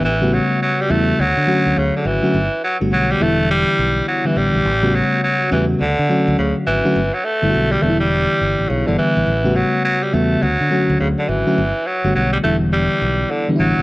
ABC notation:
X:1
M:4/4
L:1/16
Q:"Swing 16ths" 1/4=104
K:Edor
V:1 name="FM electric piano"
z [C,G,A,B,F]4 z [C,G,A,B,E]2 z2 [D,F,A,CF]4 z [D,F,A,CF] | z3 [D,G,A,B,F]3 [D,E,G,B,E]6 z [D,E,G,B,E]3 | z [C,G,A,B,F]4 z [C,G,A,B,F]2 z2 [D,F,A,CF]4 z [D,F,A,CF] | z3 [D,G,A,B,EF]3 [D,E,G,B,DE]6 z [D,E,G,B,E]3 |
z [C,G,A,B,F]4 z [C,G,A,B,F]2 z2 [D,F,A,CF]4 z [D,F,A,CF] | z3 [D,G,A,B,F]3 [D,E,G,B,E]6 z [D,E,G,B,DE]3 |]
V:2 name="Tenor saxophone" clef=bass
E,2 F,2 F, G, A,2 F,4 C, D, E,2- | E,2 F,2 F, G, A,2 G,4 F, E, G,2- | G,2 F,2 F,2 E,2 D,4 C, z E,2- | E, F, A,3 G, A, G,4- G, C, D, E,2- |
E,2 F,2 F, G, A,2 F,4 C, D, E,2- | E,2 F,2 F, G, A,2 G,4 D, z F,2 |]
V:3 name="Fingered electric bass" clef=bass
A,,,3 z3 E,,2 D,, D, z D,, D,, z ^G,,, z | G,,, z2 G,,, B,,,2 E,,,4 B,,,2 z2 A,,, ^A,,, | A,,,3 z3 E,,2 D,, D, z D,, D,, z ^G,,, z | G,,, z2 G,,, B,,,2 E,,,4 G,,, A,,, B,,, G,,, z A,,, |
A,,,3 z3 E,,2 D,, D, z D,, D,, z ^G,,, z | G,,, z2 G,,, B,,,2 E,,,4 B,,,2 z2 A,,, ^A,,, |]